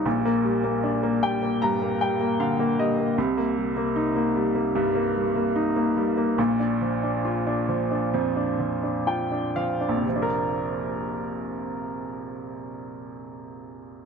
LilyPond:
<<
  \new Staff \with { instrumentName = "Grand piano" } { \time 4/4 \key bes \major \tempo 4 = 71 r4. g''8 bes''8 g''8 f''8 ees''8 | r1 | r2. g''8 f''8 | r1 | }
  \new Staff \with { instrumentName = "Grand piano" } { \time 4/4 \key bes \major <bes,, bes,>16 bes16 g16 bes16 d'16 bes16 g16 bes16 <g, g>16 bes16 g16 bes16 d16 bes16 g16 bes16 | <c, c>16 bes16 g16 bes16 ees'16 bes16 g16 bes16 <g, g>16 bes16 g16 bes16 ees'16 bes16 g16 bes16 | <bes,, bes,>16 d'16 f16 d'16 f'16 d'16 f16 d'16 <f, f>16 d'16 f16 d'16 f'16 d'16 f16 d'16 | <bes,, f, c f d' bes'>1 | }
>>